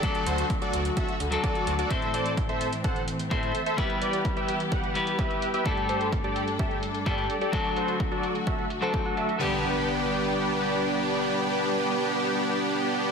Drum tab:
HH |xxxxxxxxxxxxxxxx|xxxxxxxxxxxxxxxx|xxxxxxxxxxxxxxxx|xxxxxxxxxxxxxxxx|
BD |o---o---o---o---|o---o---o---o---|o---o---o---o---|o---o---o---o---|

HH |xxxxxxxxxxxxxxxx|----------------|----------------|
BD |o---o---o---o---|----------------|----------------|